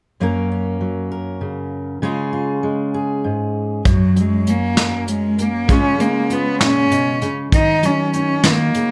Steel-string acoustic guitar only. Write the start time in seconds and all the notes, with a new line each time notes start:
0.20 F#2 F#3 A#3 C#4 A#4
0.52 C#4
0.81 F#3
1.12 A#4
1.41 C#3
2.02 C#3 G#3 C#4 F4 G#4
2.33 F4
2.63 G#3
2.94 G#4
3.24 G#2
3.85 F#2
4.16 F#3
4.47 C#4
4.77 A#4
5.08 C#4
5.38 A#4
5.68 C#3 G#3 C#4 F4 G#4
5.99 G#3
6.30 F4
6.60 A#2
6.91 B2
7.22 C#3
7.52 D#3
7.82 F#3
8.14 D#4
8.44 D#3
8.75 C#3